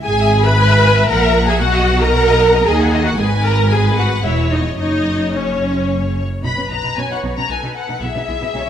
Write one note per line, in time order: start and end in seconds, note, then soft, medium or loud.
0.04 1.06 G#1 medium
0.04 1.06 G#2 medium
0.04 0.42 G#4 loud
0.04 0.17 G#5 medium
0.04 0.42 G#5 medium
0.18 0.32 E5 medium
0.31 0.44 G#5 medium
0.44 1.10 B4 loud
0.44 0.58 E5 medium
0.44 1.08 B5 medium
0.57 0.70 G#5 medium
0.70 0.84 E5 medium
0.84 0.97 G#5 medium
0.97 1.10 E5 medium
1.09 1.61 A#1 medium
1.09 1.61 A#2 medium
1.09 1.48 A#4 loud
1.09 1.22 F#5 medium
1.09 1.47 A#5 medium
1.23 1.36 E5 medium
1.35 1.49 F#5 medium
1.47 1.61 G#4 medium
1.47 1.62 E5 medium
1.47 1.61 G#5 medium
1.61 2.66 B1 medium
1.61 2.66 B2 medium
1.61 2.00 F#4 loud
1.61 2.00 F#5 medium
1.61 1.74 F#5 medium
1.74 1.88 D#5 medium
1.88 2.01 F#5 medium
2.00 2.66 A#4 loud
2.00 2.14 D#5 medium
2.00 2.65 A#5 medium
2.14 2.26 F#5 medium
2.27 2.40 D#5 medium
2.40 2.53 F#5 medium
2.54 2.66 D#5 medium
2.65 3.17 D#2 medium
2.65 3.17 D#3 medium
2.65 3.05 G#4 medium
2.65 2.79 D#5 medium
2.65 3.05 G#5 medium
2.80 2.93 F#5 medium
2.93 3.06 D#5 medium
3.05 3.10 F#4 medium
3.05 3.18 F#5 medium
3.05 3.19 F#5 medium
3.18 4.21 G#1 medium
3.18 4.21 G#2 medium
3.18 3.26 G#4 medium
3.18 3.68 B4 medium
3.18 3.44 G#5 medium
3.44 3.71 A#4 loud
3.44 3.71 A#5 medium
3.70 3.99 G#4 medium
3.70 4.24 B4 medium
3.70 3.97 G#5 medium
3.97 4.07 F#4 medium
3.97 4.24 F#5 medium
4.24 4.78 E1 medium
4.24 4.78 E2 medium
4.24 4.51 E4 medium
4.24 4.79 C#5 medium
4.24 4.52 E5 medium
4.51 4.60 D#4 medium
4.51 4.77 D#5 medium
4.79 6.20 F#1 medium
4.79 6.20 F#2 medium
4.79 5.34 D#4 medium
4.79 5.34 C#5 medium
4.79 5.33 D#5 medium
5.34 6.16 C#4 medium
5.34 6.16 C#5 medium
5.34 6.22 C#5 medium
6.43 6.49 B1 soft
6.43 6.49 B2 soft
6.43 6.49 D#4 soft
6.43 7.46 B4 soft
6.43 6.93 B4 soft
6.43 6.69 B5 medium
6.57 6.63 B2 soft
6.57 6.62 C#4 soft
6.70 6.75 B1 soft
6.70 6.76 B2 soft
6.70 6.77 D#4 soft
6.70 6.97 A#5 medium
6.84 6.89 B2 soft
6.84 6.89 D#4 soft
6.97 7.02 B1 soft
6.97 7.02 B2 soft
6.97 7.03 C#4 soft
6.97 7.49 C#5 soft
6.97 7.10 G#5 medium
7.10 7.16 B2 soft
7.10 7.16 D#4 soft
7.10 7.19 F#5 soft
7.23 7.29 B1 soft
7.23 7.29 B2 medium
7.23 7.29 D#4 medium
7.37 7.42 B2 soft
7.37 7.42 C#4 soft
7.37 7.50 A#5 medium
7.49 7.55 B1 soft
7.49 7.55 B2 soft
7.49 7.56 D#4 soft
7.49 8.03 A4 soft
7.49 8.02 B4 soft
7.49 7.77 G#5 medium
7.63 7.68 B2 soft
7.63 7.69 D#4 soft
7.77 8.02 F#5 medium
7.89 7.94 B2 soft
7.89 7.95 D#4 soft
8.01 8.07 B1 medium
8.01 8.08 B2 soft
8.01 8.08 E4 soft
8.01 8.70 G#4 soft
8.01 8.55 G#4 soft
8.01 8.70 E5 medium
8.16 8.21 B2 soft
8.16 8.21 D#4 soft
8.28 8.34 B1 soft
8.28 8.34 B2 soft
8.28 8.34 E4 soft
8.41 8.47 B2 medium
8.41 8.47 E4 soft
8.55 8.60 B1 soft
8.55 8.61 B2 soft
8.55 8.60 D#4 soft
8.55 8.70 C#5 medium